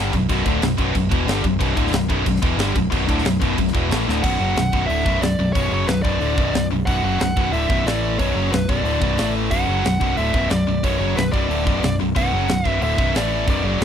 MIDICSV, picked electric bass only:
0, 0, Header, 1, 2, 480
1, 0, Start_track
1, 0, Key_signature, 2, "minor"
1, 0, Tempo, 329308
1, 431, Time_signature, 4, 2, 24, 8
1, 20180, End_track
2, 0, Start_track
2, 0, Title_t, "Picked electric bass"
2, 0, Program_c, 0, 34
2, 0, Note_on_c, 0, 31, 88
2, 156, Note_off_c, 0, 31, 0
2, 187, Note_on_c, 0, 23, 77
2, 412, Note_off_c, 0, 23, 0
2, 421, Note_on_c, 0, 23, 83
2, 648, Note_off_c, 0, 23, 0
2, 659, Note_on_c, 0, 26, 88
2, 887, Note_off_c, 0, 26, 0
2, 892, Note_on_c, 0, 23, 81
2, 1122, Note_off_c, 0, 23, 0
2, 1137, Note_on_c, 0, 23, 96
2, 1364, Note_off_c, 0, 23, 0
2, 1380, Note_on_c, 0, 23, 83
2, 1605, Note_off_c, 0, 23, 0
2, 1616, Note_on_c, 0, 28, 92
2, 1843, Note_off_c, 0, 28, 0
2, 1850, Note_on_c, 0, 31, 89
2, 2079, Note_off_c, 0, 31, 0
2, 2094, Note_on_c, 0, 23, 80
2, 2321, Note_off_c, 0, 23, 0
2, 2329, Note_on_c, 0, 23, 92
2, 2558, Note_off_c, 0, 23, 0
2, 2573, Note_on_c, 0, 26, 100
2, 2777, Note_off_c, 0, 26, 0
2, 2786, Note_on_c, 0, 23, 82
2, 3025, Note_off_c, 0, 23, 0
2, 3051, Note_on_c, 0, 23, 94
2, 3278, Note_off_c, 0, 23, 0
2, 3288, Note_on_c, 0, 23, 84
2, 3516, Note_off_c, 0, 23, 0
2, 3527, Note_on_c, 0, 28, 91
2, 3729, Note_off_c, 0, 28, 0
2, 3737, Note_on_c, 0, 31, 94
2, 3979, Note_off_c, 0, 31, 0
2, 4014, Note_on_c, 0, 23, 87
2, 4238, Note_off_c, 0, 23, 0
2, 4252, Note_on_c, 0, 23, 81
2, 4477, Note_off_c, 0, 23, 0
2, 4495, Note_on_c, 0, 26, 91
2, 4718, Note_off_c, 0, 26, 0
2, 4724, Note_on_c, 0, 23, 82
2, 4952, Note_off_c, 0, 23, 0
2, 4973, Note_on_c, 0, 23, 96
2, 5196, Note_off_c, 0, 23, 0
2, 5211, Note_on_c, 0, 23, 81
2, 5435, Note_off_c, 0, 23, 0
2, 5456, Note_on_c, 0, 28, 88
2, 5678, Note_off_c, 0, 28, 0
2, 5689, Note_on_c, 0, 33, 90
2, 5914, Note_off_c, 0, 33, 0
2, 5936, Note_on_c, 0, 26, 90
2, 6158, Note_off_c, 0, 26, 0
2, 6168, Note_on_c, 0, 23, 85
2, 6394, Note_off_c, 0, 23, 0
2, 6415, Note_on_c, 0, 30, 89
2, 6637, Note_off_c, 0, 30, 0
2, 6657, Note_on_c, 0, 23, 79
2, 6879, Note_off_c, 0, 23, 0
2, 6893, Note_on_c, 0, 23, 88
2, 7116, Note_off_c, 0, 23, 0
2, 7130, Note_on_c, 0, 26, 92
2, 7355, Note_off_c, 0, 26, 0
2, 7362, Note_on_c, 0, 23, 86
2, 7591, Note_off_c, 0, 23, 0
2, 7602, Note_on_c, 0, 23, 77
2, 7831, Note_off_c, 0, 23, 0
2, 7844, Note_on_c, 0, 23, 79
2, 8072, Note_off_c, 0, 23, 0
2, 8090, Note_on_c, 0, 23, 86
2, 8315, Note_off_c, 0, 23, 0
2, 8330, Note_on_c, 0, 30, 88
2, 8545, Note_off_c, 0, 30, 0
2, 8554, Note_on_c, 0, 23, 81
2, 8787, Note_off_c, 0, 23, 0
2, 8809, Note_on_c, 0, 23, 87
2, 9029, Note_off_c, 0, 23, 0
2, 9038, Note_on_c, 0, 26, 91
2, 9270, Note_off_c, 0, 26, 0
2, 9295, Note_on_c, 0, 23, 86
2, 9519, Note_off_c, 0, 23, 0
2, 9527, Note_on_c, 0, 23, 72
2, 9750, Note_off_c, 0, 23, 0
2, 9759, Note_on_c, 0, 23, 80
2, 9990, Note_off_c, 0, 23, 0
2, 10010, Note_on_c, 0, 23, 85
2, 10223, Note_off_c, 0, 23, 0
2, 10231, Note_on_c, 0, 30, 95
2, 10467, Note_off_c, 0, 30, 0
2, 10492, Note_on_c, 0, 23, 81
2, 10718, Note_off_c, 0, 23, 0
2, 10739, Note_on_c, 0, 23, 86
2, 10956, Note_off_c, 0, 23, 0
2, 10965, Note_on_c, 0, 26, 94
2, 11194, Note_off_c, 0, 26, 0
2, 11206, Note_on_c, 0, 23, 93
2, 11429, Note_off_c, 0, 23, 0
2, 11438, Note_on_c, 0, 33, 90
2, 11894, Note_off_c, 0, 33, 0
2, 11937, Note_on_c, 0, 23, 87
2, 12161, Note_off_c, 0, 23, 0
2, 12174, Note_on_c, 0, 30, 87
2, 12400, Note_off_c, 0, 30, 0
2, 12424, Note_on_c, 0, 23, 78
2, 12645, Note_off_c, 0, 23, 0
2, 12662, Note_on_c, 0, 23, 87
2, 12865, Note_off_c, 0, 23, 0
2, 12874, Note_on_c, 0, 26, 95
2, 13109, Note_off_c, 0, 26, 0
2, 13132, Note_on_c, 0, 23, 87
2, 13359, Note_off_c, 0, 23, 0
2, 13384, Note_on_c, 0, 33, 81
2, 13829, Note_off_c, 0, 33, 0
2, 13857, Note_on_c, 0, 23, 84
2, 14082, Note_off_c, 0, 23, 0
2, 14100, Note_on_c, 0, 30, 88
2, 14323, Note_off_c, 0, 30, 0
2, 14349, Note_on_c, 0, 23, 80
2, 14568, Note_off_c, 0, 23, 0
2, 14581, Note_on_c, 0, 23, 86
2, 14804, Note_off_c, 0, 23, 0
2, 14825, Note_on_c, 0, 26, 93
2, 15046, Note_off_c, 0, 26, 0
2, 15065, Note_on_c, 0, 23, 81
2, 15276, Note_off_c, 0, 23, 0
2, 15284, Note_on_c, 0, 23, 72
2, 15516, Note_off_c, 0, 23, 0
2, 15539, Note_on_c, 0, 23, 78
2, 15764, Note_off_c, 0, 23, 0
2, 15788, Note_on_c, 0, 23, 84
2, 16009, Note_off_c, 0, 23, 0
2, 16020, Note_on_c, 0, 30, 85
2, 16245, Note_off_c, 0, 30, 0
2, 16275, Note_on_c, 0, 23, 78
2, 16493, Note_off_c, 0, 23, 0
2, 16508, Note_on_c, 0, 23, 89
2, 16730, Note_off_c, 0, 23, 0
2, 16737, Note_on_c, 0, 26, 88
2, 16964, Note_off_c, 0, 26, 0
2, 17005, Note_on_c, 0, 23, 96
2, 17219, Note_off_c, 0, 23, 0
2, 17238, Note_on_c, 0, 23, 77
2, 17456, Note_off_c, 0, 23, 0
2, 17488, Note_on_c, 0, 23, 83
2, 17701, Note_off_c, 0, 23, 0
2, 17715, Note_on_c, 0, 23, 81
2, 17935, Note_off_c, 0, 23, 0
2, 17971, Note_on_c, 0, 30, 93
2, 18184, Note_off_c, 0, 30, 0
2, 18222, Note_on_c, 0, 23, 84
2, 18431, Note_off_c, 0, 23, 0
2, 18440, Note_on_c, 0, 23, 92
2, 18659, Note_off_c, 0, 23, 0
2, 18676, Note_on_c, 0, 26, 94
2, 18897, Note_off_c, 0, 26, 0
2, 18911, Note_on_c, 0, 23, 91
2, 19135, Note_off_c, 0, 23, 0
2, 19156, Note_on_c, 0, 33, 84
2, 19602, Note_off_c, 0, 33, 0
2, 19642, Note_on_c, 0, 23, 81
2, 19857, Note_off_c, 0, 23, 0
2, 19865, Note_on_c, 0, 30, 95
2, 20082, Note_off_c, 0, 30, 0
2, 20091, Note_on_c, 0, 23, 84
2, 20180, Note_off_c, 0, 23, 0
2, 20180, End_track
0, 0, End_of_file